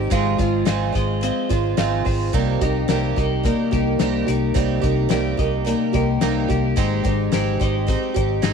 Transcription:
Already playing: G#3 C4 D#4 G4 D#5
0.10 G#1 G#2 D#3 F3 G#3 C4 F4, kick, closed hi-hat
0.38 G#1 F3 G#3 C4 F4, kick, closed hi-hat
0.65 G#1 G#2 D#3 F3 G#3 C4 F4 C5, snare, closed hi-hat
0.92 G#1 F3 G#3 C4 F4 D#5, kick, snare, closed hi-hat
1.21 F3 G#3 C4 F4, closed hi-hat
1.49 G#1 F3 G#3 C4 F4 C5, kick, closed hi-hat
1.77 G#1 G#2 D#3 F3 G#3 C4 F4, snare, closed hi-hat
2.05 G#1 F3 G#3 C4 F4 C5, kick, open hi-hat
2.33 C2 C3 G3 A#3 D#4 G4, kick, closed hi-hat
2.61 C2 A#3 D#4 G4, kick, closed hi-hat
2.88 C2 C3 G3 A#3 D#4 G4, snare, closed hi-hat
3.16 C2 A#3 D#4 G4 D#5, kick, closed hi-hat
3.43 G3 A#3 D#4 G4, kick, closed hi-hat
3.71 C2 A#3 D#4 G4, kick, closed hi-hat
3.99 C2 C3 G3 A#3 D#4 G4, snare, closed hi-hat
4.27 C2 A#3 D#4 G4, closed hi-hat
4.54 C2 C3 G3 A#3 D#4 G4, kick, closed hi-hat
4.82 C2 A#3 D#4 G4, kick, closed hi-hat
5.09 C2 C3 G3 A#3 D#4 G4, snare, closed hi-hat
5.37 C2 A#3 D#4 G4 D#5, kick, closed hi-hat
5.65 G3 A#3 D#4 G4, closed hi-hat
5.93 C2 A#3 D#4 G4, kick, closed hi-hat
6.21 C2 C3 G3 A#3 D#4 G4, snare, closed hi-hat
6.49 C2 A#3 D#4 G4, kick, closed hi-hat
6.76 G#1 G#3 C4 D#4 G4, kick, closed hi-hat
7.04 G#1 C4 D#4 G4, kick, closed hi-hat
7.32 G#1 G#3 C4 D#4 G4, snare, closed hi-hat
7.60 G#1 C4 D#4 G4 D#5, kick, snare, closed hi-hat
7.87 G#3 C4 D#4 G4, kick, closed hi-hat
8.14 G#1 C4 D#4 G4, kick, closed hi-hat
8.42 G#1 G#3 C4 D#4 G4, snare, closed hi-hat

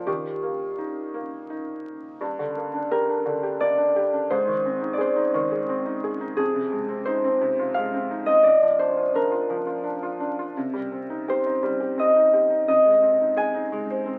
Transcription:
Already playing: F3 D4 F4 A#4
0.07 D#3 G4
0.43 A#3
0.78 D#4
1.14 A#3
1.50 D#4
2.21 G2
2.39 D3
2.56 A#3
2.74 D4
2.91 G4 A#4
3.09 D4
3.26 D3
3.43 G4
3.60 A#3 D5
3.78 D4
3.96 G4
4.13 D4
4.30 G#2 C5
4.47 D#3
4.66 C4
4.82 D#4
4.93 D5
4.98 G#4 C5
5.16 D#4
5.34 D#3
5.52 G#4
5.69 C4
5.86 D#4
6.04 G#4
6.21 D#4
6.37 F2 G#4
6.54 C3
6.72 G#3
6.89 C4
7.05 D#4 C5
7.24 C4
7.41 C3
7.59 F4
7.74 G#3 F5
7.94 C4
8.11 D#4
8.26 C4 D#5
8.43 A#2 D5
8.62 F3
8.79 D4 C5
8.97 F4
9.14 D4 A#4
9.32 F4
9.50 F3
9.67 F4
9.84 D4
10.03 F4
10.20 D4
10.39 F4
10.57 C3
10.74 G3
10.92 C4
11.10 D#4
11.28 G4 C5
11.46 D#4
11.63 G3
11.80 G4
11.98 C4 D#5
12.16 D#4
12.33 G4
12.50 D#4
12.68 C3 D#5
12.85 G#3
13.03 C4
13.20 D#4
13.37 G#4 G#5
13.54 D#4
13.72 G#3
13.90 C5
14.06 C4

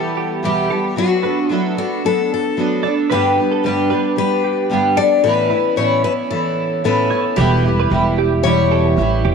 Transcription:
Already playing: E3 G3 B3 G4 A4
0.17 G4
0.43 E2 B2 E3 G3 B3 G4
0.70 E3 G3 B3 G4 A4
0.96 F#3 B3 D4 F#4 A4
1.22 B3 D4 A4 B4
1.49 F#3 B3 D4 A4
1.53 E4
1.77 B3 D4 F#4 A4
2.04 F#3 B3 D4 A4
2.34 A4
2.57 F#3 B3 D4 A4
2.83 B3 D4 A4 D5
3.10 G2 D3 G3 B3 D4 G4 B4
3.37 G3 B3 D4 G4
3.51 A4
3.63 G2 D3 G3 B3 D4 G4 B4
3.90 G3 B3 D4 G4 B4
4.16 G3 B3 D4 G4 B4
4.44 G4
4.69 G2 D3 G3 B3 D4 G4
4.97 G3 B3 D4 G4 A4 D5
5.23 A2 E3 B3 C#4 E4 B4
5.50 B3 C#4 E4 B4
5.76 A2 E3 B3 C#4 E4 C#5
6.04 B3 C#4 E4 B4
6.31 E3 B3 C#4 E4 A4
6.84 A2 E3 B3 C#4 E4 A4 B4
7.10 B3 C#4 E4 C#5
7.36 E1 E2 B2 E3 G3 E4 G4 B4
7.65 E3 G3 E4 G4
7.80 B4
7.90 E1 E3 G3 E4 G4
8.18 G4
8.43 E2 B2 E3 G3 E4 G4 C#5
8.72 A4
8.97 A1 E3 G3 E4 G4
9.25 E1 G4

